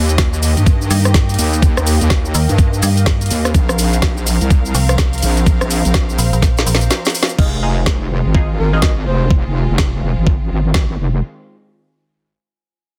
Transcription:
Already playing: D#2 D#3 A#3 C4 D#4 G4 A#4 D#5
0.09 closed hi-hat, shaker
0.18 G5, kick, snare, closed hi-hat, shaker
0.26 F5
0.33 shaker
0.43 open hi-hat, shaker
0.57 G2, closed hi-hat, shaker
0.66 kick, closed hi-hat, shaker
0.81 shaker
0.91 G2, open hi-hat, shaker
1.05 cross-stick, closed hi-hat, shaker
1.14 kick, snare, closed hi-hat, shaker
1.29 closed hi-hat, shaker
1.34 closed hi-hat
1.38 D#2, open hi-hat, shaker
1.53 closed hi-hat, shaker
1.62 kick, closed hi-hat, shaker
1.77 D#2, cross-stick, shaker
1.87 open hi-hat, shaker
2.01 D#2, closed hi-hat, shaker
2.10 kick, snare, closed hi-hat, shaker
2.25 shaker
2.35 D#2, open hi-hat, shaker
2.49 G2, closed hi-hat, shaker
2.58 kick, closed hi-hat, shaker
2.73 shaker
2.83 G2, open hi-hat, shaker
2.97 closed hi-hat, shaker
3.06 kick, snare, closed hi-hat, shaker
3.21 closed hi-hat, shaker
3.26 closed hi-hat
3.31 D#2, open hi-hat, shaker
3.45 cross-stick, closed hi-hat, shaker
3.54 A#1 F3 C4 A#4 F5, kick, closed hi-hat, shaker
3.69 cross-stick, shaker
3.79 open hi-hat, shaker
3.89 C5
3.93 closed hi-hat, shaker
4.02 kick, snare, closed hi-hat, shaker
4.17 shaker
4.27 open hi-hat, shaker
4.41 C2, closed hi-hat, shaker
4.50 kick, closed hi-hat, shaker
4.65 shaker
4.74 C2, open hi-hat, shaker
4.89 cross-stick, closed hi-hat, shaker
4.98 kick, snare, closed hi-hat, shaker
5.13 closed hi-hat, shaker
5.18 closed hi-hat
5.22 A#1, open hi-hat, shaker
5.37 closed hi-hat, shaker
5.46 kick, closed hi-hat, shaker
5.61 A#1, cross-stick, shaker
5.71 open hi-hat, shaker
5.85 A#1, closed hi-hat, shaker
5.94 kick, snare, closed hi-hat, shaker
6.09 shaker
6.19 A#1, open hi-hat, shaker
6.33 A#1, closed hi-hat, shaker
6.42 kick, snare, closed hi-hat, shaker
6.57 snare, shaker
6.66 A#1, open hi-hat, shaker
6.75 snare
6.81 closed hi-hat, shaker
6.91 snare, closed hi-hat, shaker
7.05 snare, closed hi-hat, shaker
7.10 closed hi-hat
7.15 open hi-hat, shaker
7.23 snare
7.29 closed hi-hat, shaker
7.39 F1 D#3 G#3 C4 D#4 F4 G#4, kick, crash
7.63 D#4 F4 G#4
7.86 kick, snare
8.07 G#5
8.25 G#1
8.35 D#4 F4 G#4, kick
8.58 G#1 A#4
8.73 D#4 F4 G#4 D#5
8.82 D#5, kick, snare
9.06 F1 C5
9.31 kick
9.45 F1
9.69 F1
9.78 kick, snare
10.03 F1
10.17 G#1
10.27 kick
10.51 G#1
10.74 kick, snare
10.99 F1

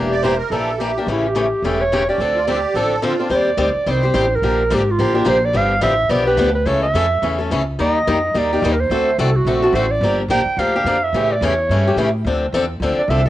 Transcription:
Already playing: E1 E3 A#3 D4 G4
0.11 D5
0.22 E3 A#3 D4 G4 C5
0.38 A#4
0.50 A#1 E3 A#3 D4 G4 A4
0.78 E3 A#3 D4 G4
0.97 A#3 D4 G4
1.06 A1 C#3 E3 A3 C#4 G4
1.11 E4
1.27 G4
1.35 C#3 E3 A3 C#4 G4
1.62 E1 C#3 E3 A3 C#4 G4 A4
1.81 C#5
1.92 C#3 E3 A3 C#4 G4
2.09 A3 C#4 G4 D5
2.18 D2 D3 F3 C4 D4 A4
2.35 F4
2.47 D3 F3 C4 D4 G4 A4
2.74 A1 D3 F3 C4 D4 A4
3.02 D3 F3 C4 D4 F4 A4
3.19 C4 D4 A4
3.29 D#2 D#3 G3 C4 G4 C5
3.35 D5
3.57 D2 D#3 G3 C4 G4 C5
3.75 muted upright bass stroke
3.86 C2 D#3 G3 C4 G4 C5
3.91 C5
4.03 C4 G4 C5
4.14 A1 D#3 G3 C4 G4 C5
4.35 A#4
4.42 A#1 D3 F3 A#3 D4 G4
4.70 G#1 D3 F3 A#3 D4 G4
4.74 G4
4.91 F4
4.99 A1 D3 F3 A#3 D4 G4
5.14 A#3 D4 G4
5.25 A#1 D3 F3 A#3 D4 G4
5.29 C5
5.45 D5
5.53 G1 D3 F3 B3 D4 G4 F5
5.81 A1 D3 F3 B3 D4 G4 E5
6.09 B1 D3 F3 B3 D4 G4 D5
6.26 B3 D4 G4 B4
6.37 D2 D3 F3 B3 D4 G4
6.55 B4
6.65 C#2 C#3 E3 A3 C#4 A4 C#5
6.83 E5
6.94 F2 C#3 E3 A3 C#4 A4
7.22 E2 C#3 E3 A3 C#4 A4
7.39 A3 C#4 A4
7.51 C#2 C#3 E3 A3 C#4 A4
7.79 D#2 D#3 G3 A#3 D#4 G4 D#5
8.07 F2 D#3 G3 A#3 D#4 G4
8.34 D#2 D#3 G3 A#3 D#4 G4 D5
8.53 A#3 D#4 G4
8.62 D#2 D#3 G3 A#3 D#4 G4
8.72 A#4
8.80 C5
8.90 D2 D3 A3 C4 F#4 A4
9.18 C2 D3 A3 C4 F#4 A4
9.36 F#4
9.45 A#1 D3 A3 C4 F#4 A4
9.62 C4 F#4 A4
9.73 A1 D3 A3 C4 F#4 A4 C5
9.91 D5
10.01 G1 D3 F3 A#3 D4 G4
10.28 A#1 D3 F3 A#3 D4 G4 G5
10.45 muted upright bass stroke
10.57 D2 D3 F3 A#3 D4 G4 F5
10.75 A#3 D4 G4
10.84 F2 D3 F3 A#3 D4 G4
11.03 E5
11.13 A2 C#3 E3 A3 C#4 G4
11.32 D5
11.41 E2 C#3 E3 A3 C#4 G4 C#5
11.69 G2 C#3 E3 A3 C#4 G4
11.87 A3 C#4 G4
11.96 A2 C#3 E3 A3 C#4 G4
12.24 D2 D3 F3 C4 D4 A4
12.52 E2 D3 F3 C4 D4 A4
12.80 D2 D3 F3 C4 D4 A4
12.96 D5, muted upright bass stroke
13.08 C2 D3 F3 C4 D4 A4 E5
13.26 A4

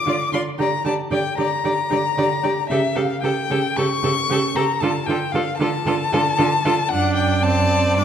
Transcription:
Already playing: D6
0.06 D3 F4 D5
0.32 D3 F4 D5 C6
0.59 D3 G4 D5 A#5
0.85 D3 G4 D5 A5
1.11 D3 G4 D5 G5
1.37 D3 G4 D5 A#5
1.64 D3 G4 D5
1.90 D3 G4 D5
2.18 D3 G4 D5
2.43 D3 G4 D5
2.70 C#3 G4 A4 E5
2.95 C#3 G4 A4 F5
3.22 C#3 G4 A4 G5
3.50 C#3 G4 A4
3.77 C#3 G4 A4 C#6
4.03 C#3 G4 A4
4.29 C#3 G4 A4
4.55 C#3 G4 A4 A#5
4.80 D3 F4 A4 A5
5.06 D3 F4 A4 G5
5.32 D3 F4 A4 F5
5.58 D3 F4 A4 A5
5.86 D3 F4 A4
6.13 D3 F4 A4
6.38 D3 F4 A4
6.65 D3 F4 A4
6.89 F#2 D4 D5 F#5
7.16 G5
7.43 C4 A5
7.97 G2 D4 D6

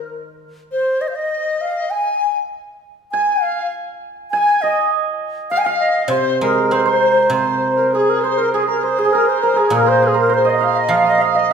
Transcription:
Already playing: D#3
0.71 C5
1.01 D#5
1.08 C5 F5
1.15 D#5
1.61 F5
1.90 G#5
3.12 G#5
3.42 F5
4.31 G#5
4.62 D#5
5.50 F5
5.58 G#5
5.65 F5
5.80 D#5
6.03 D#5
6.08 C3 C5
6.41 G#3 A#4
6.71 C4 C5
6.80 A#4
6.86 C5
7.30 C3 C5
7.34 C5
7.75 A#4
7.91 G#4
8.10 A#4
8.21 C5
8.38 A#4
8.53 G#4
8.67 A#4
8.83 C5
8.98 G#4
9.05 G#4
9.12 A#4
9.26 C5
9.43 A#4
9.54 G#4 A#4
9.58 G#4
9.70 A#2 A#4
9.86 C5
10.02 G#4
10.12 A#4 C5
10.19 A#4
10.30 C5
10.34 C5
10.45 D#5
10.49 D#5 F5
10.56 D#5
10.61 F5
10.73 F5
10.77 D#5
10.89 F3 F5
10.96 F5
11.04 D#5
11.09 D#5
11.18 F5
11.25 F5
11.35 D#5

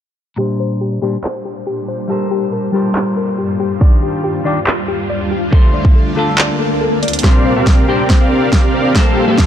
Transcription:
0.36 A#2 G3 D4 G4 C5
0.40 C5
0.60 C5
0.81 G4
1.02 A#2 G3 D4 G4 C5
1.24 C5, clap
1.45 G4
1.67 G4
1.88 C5
2.08 G2 G3 A#3 F4 G4 A4 A#4 A5
2.12 C5
2.31 G4
2.53 A#4
2.72 G3 F4 G4 A4 A#4
2.76 C5
2.95 G4, clap
3.17 A#4
3.38 G4
3.60 G4
3.79 D#2 D#3 D4 F4 G4 D5, kick
4.03 G4
4.24 G4
4.44 D#3 D4 F4 G4 D5
4.67 G4, clap
4.88 G4
5.10 D5
5.31 G4
5.51 D2 D3 A3 C4 F4 A4, kick
5.55 C5
5.74 D5
5.85 kick
5.95 A4
6.15 D3 A3 F4 A4
6.38 D5, clap, swell
6.59 A4
6.81 A4
7.03 D5, closed hi-hat
7.08 closed hi-hat
7.13 closed hi-hat
7.19 A#2, closed hi-hat
7.23 A#2 G3 C4 D4 G4 A#4 C5 D5 F5, kick, snare, riser
7.45 C5
7.56 C4 G4 A#4 D5 F5
7.67 G4, kick, snare
7.87 A#2 G3 C4 D4 G4 A#4 C5 D5 G5
8.10 C5, kick, snare
8.21 C4 G4 A#4 D5 F5
8.31 G4
8.53 C4 G4 A#4 D5 F5, kick, snare
8.74 C5
8.93 G2 G3 A#3 C4 F4 G4 A4 A#4 C5 F5 A5, kick, snare
9.17 G4
9.28 A#3 G4 A4 C5 F5
9.38 A#4, kick, snare

